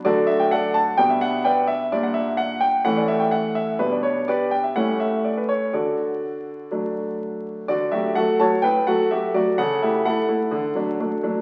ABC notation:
X:1
M:4/4
L:1/16
Q:1/4=127
K:D
V:1 name="Grand piano"
[FAd]2 e g [Adf]2 a2 g e f2 [Bdg]2 e2 | d f e2 f2 g2 f d e g f2 e2 | B d c2 [GBd]2 g e f2 e2 d B c2 | [FAd]12 z4 |
[Fd]2 [Ge]2 [Af]2 [ca]2 [Bg]2 [Af]2 [Ge]2 [Fd]2 | [Af]2 [Ge]2 [Af]8- [Af]2 z2 |]
V:2 name="Grand piano"
[D,F,A,D]8 [B,,G,B,D]8 | [_B,,G,D]8 [A,,E,A,C]8 | [B,,G,D]8 [A,,G,A,C]8 | D,8 [F,A,D]8 |
D,2 [F,A,F]2 [F,A,F]2 [F,A,F]2 A,,2 [F,A,F]2 [F,A,F]2 [F,A,]2 | C,2 [A,E]2 [A,E]2 [A,E]2 D,2 [F,A,D]2 [F,A,D]2 [F,A,D]2 |]